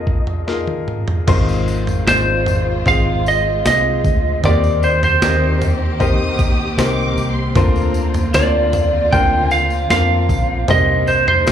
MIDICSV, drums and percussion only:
0, 0, Header, 1, 2, 480
1, 0, Start_track
1, 0, Tempo, 795756
1, 773, Time_signature, 4, 2, 24, 8
1, 2205, Tempo, 782269
1, 7030, End_track
2, 0, Start_track
2, 0, Title_t, "Drums"
2, 42, Note_on_c, 9, 36, 69
2, 102, Note_off_c, 9, 36, 0
2, 163, Note_on_c, 9, 43, 44
2, 223, Note_off_c, 9, 43, 0
2, 289, Note_on_c, 9, 38, 40
2, 349, Note_off_c, 9, 38, 0
2, 407, Note_on_c, 9, 48, 47
2, 467, Note_off_c, 9, 48, 0
2, 530, Note_on_c, 9, 45, 63
2, 590, Note_off_c, 9, 45, 0
2, 649, Note_on_c, 9, 43, 69
2, 709, Note_off_c, 9, 43, 0
2, 770, Note_on_c, 9, 43, 109
2, 770, Note_on_c, 9, 49, 102
2, 771, Note_on_c, 9, 36, 113
2, 773, Note_on_c, 9, 54, 39
2, 830, Note_off_c, 9, 43, 0
2, 831, Note_off_c, 9, 49, 0
2, 832, Note_off_c, 9, 36, 0
2, 833, Note_off_c, 9, 54, 0
2, 897, Note_on_c, 9, 54, 30
2, 957, Note_off_c, 9, 54, 0
2, 1012, Note_on_c, 9, 54, 47
2, 1072, Note_off_c, 9, 54, 0
2, 1130, Note_on_c, 9, 43, 57
2, 1136, Note_on_c, 9, 54, 36
2, 1190, Note_off_c, 9, 43, 0
2, 1196, Note_off_c, 9, 54, 0
2, 1251, Note_on_c, 9, 38, 113
2, 1259, Note_on_c, 9, 54, 68
2, 1312, Note_off_c, 9, 38, 0
2, 1319, Note_off_c, 9, 54, 0
2, 1486, Note_on_c, 9, 43, 76
2, 1494, Note_on_c, 9, 54, 46
2, 1546, Note_off_c, 9, 43, 0
2, 1555, Note_off_c, 9, 54, 0
2, 1723, Note_on_c, 9, 43, 54
2, 1729, Note_on_c, 9, 36, 81
2, 1732, Note_on_c, 9, 54, 47
2, 1784, Note_off_c, 9, 43, 0
2, 1789, Note_off_c, 9, 36, 0
2, 1792, Note_off_c, 9, 54, 0
2, 1969, Note_on_c, 9, 54, 47
2, 2029, Note_off_c, 9, 54, 0
2, 2205, Note_on_c, 9, 38, 102
2, 2207, Note_on_c, 9, 54, 89
2, 2267, Note_off_c, 9, 38, 0
2, 2269, Note_off_c, 9, 54, 0
2, 2444, Note_on_c, 9, 36, 77
2, 2444, Note_on_c, 9, 54, 45
2, 2505, Note_off_c, 9, 36, 0
2, 2505, Note_off_c, 9, 54, 0
2, 2683, Note_on_c, 9, 54, 41
2, 2685, Note_on_c, 9, 43, 101
2, 2744, Note_off_c, 9, 54, 0
2, 2746, Note_off_c, 9, 43, 0
2, 2807, Note_on_c, 9, 54, 31
2, 2868, Note_off_c, 9, 54, 0
2, 2925, Note_on_c, 9, 54, 46
2, 2986, Note_off_c, 9, 54, 0
2, 3048, Note_on_c, 9, 43, 65
2, 3050, Note_on_c, 9, 54, 38
2, 3110, Note_off_c, 9, 43, 0
2, 3111, Note_off_c, 9, 54, 0
2, 3166, Note_on_c, 9, 38, 109
2, 3167, Note_on_c, 9, 54, 72
2, 3227, Note_off_c, 9, 38, 0
2, 3229, Note_off_c, 9, 54, 0
2, 3407, Note_on_c, 9, 54, 49
2, 3408, Note_on_c, 9, 43, 72
2, 3468, Note_off_c, 9, 54, 0
2, 3469, Note_off_c, 9, 43, 0
2, 3645, Note_on_c, 9, 43, 57
2, 3647, Note_on_c, 9, 36, 86
2, 3648, Note_on_c, 9, 54, 46
2, 3706, Note_off_c, 9, 43, 0
2, 3709, Note_off_c, 9, 36, 0
2, 3710, Note_off_c, 9, 54, 0
2, 3882, Note_on_c, 9, 54, 47
2, 3883, Note_on_c, 9, 36, 100
2, 3943, Note_off_c, 9, 54, 0
2, 3944, Note_off_c, 9, 36, 0
2, 4126, Note_on_c, 9, 38, 98
2, 4128, Note_on_c, 9, 54, 85
2, 4187, Note_off_c, 9, 38, 0
2, 4190, Note_off_c, 9, 54, 0
2, 4364, Note_on_c, 9, 54, 46
2, 4426, Note_off_c, 9, 54, 0
2, 4598, Note_on_c, 9, 43, 116
2, 4599, Note_on_c, 9, 54, 45
2, 4600, Note_on_c, 9, 36, 104
2, 4659, Note_off_c, 9, 43, 0
2, 4660, Note_off_c, 9, 54, 0
2, 4661, Note_off_c, 9, 36, 0
2, 4721, Note_on_c, 9, 54, 31
2, 4783, Note_off_c, 9, 54, 0
2, 4835, Note_on_c, 9, 54, 49
2, 4897, Note_off_c, 9, 54, 0
2, 4957, Note_on_c, 9, 54, 38
2, 4959, Note_on_c, 9, 43, 59
2, 5018, Note_off_c, 9, 54, 0
2, 5021, Note_off_c, 9, 43, 0
2, 5078, Note_on_c, 9, 54, 73
2, 5081, Note_on_c, 9, 38, 99
2, 5139, Note_off_c, 9, 54, 0
2, 5143, Note_off_c, 9, 38, 0
2, 5318, Note_on_c, 9, 54, 55
2, 5320, Note_on_c, 9, 43, 72
2, 5379, Note_off_c, 9, 54, 0
2, 5381, Note_off_c, 9, 43, 0
2, 5561, Note_on_c, 9, 43, 58
2, 5563, Note_on_c, 9, 36, 85
2, 5563, Note_on_c, 9, 54, 51
2, 5622, Note_off_c, 9, 43, 0
2, 5624, Note_off_c, 9, 36, 0
2, 5624, Note_off_c, 9, 54, 0
2, 5796, Note_on_c, 9, 54, 49
2, 5858, Note_off_c, 9, 54, 0
2, 5916, Note_on_c, 9, 54, 29
2, 5977, Note_off_c, 9, 54, 0
2, 6039, Note_on_c, 9, 38, 100
2, 6044, Note_on_c, 9, 54, 82
2, 6101, Note_off_c, 9, 38, 0
2, 6105, Note_off_c, 9, 54, 0
2, 6277, Note_on_c, 9, 36, 97
2, 6280, Note_on_c, 9, 54, 44
2, 6339, Note_off_c, 9, 36, 0
2, 6341, Note_off_c, 9, 54, 0
2, 6515, Note_on_c, 9, 54, 41
2, 6517, Note_on_c, 9, 43, 107
2, 6577, Note_off_c, 9, 54, 0
2, 6578, Note_off_c, 9, 43, 0
2, 6756, Note_on_c, 9, 54, 47
2, 6817, Note_off_c, 9, 54, 0
2, 6882, Note_on_c, 9, 43, 71
2, 6944, Note_off_c, 9, 43, 0
2, 6998, Note_on_c, 9, 54, 73
2, 7003, Note_on_c, 9, 38, 110
2, 7030, Note_off_c, 9, 38, 0
2, 7030, Note_off_c, 9, 54, 0
2, 7030, End_track
0, 0, End_of_file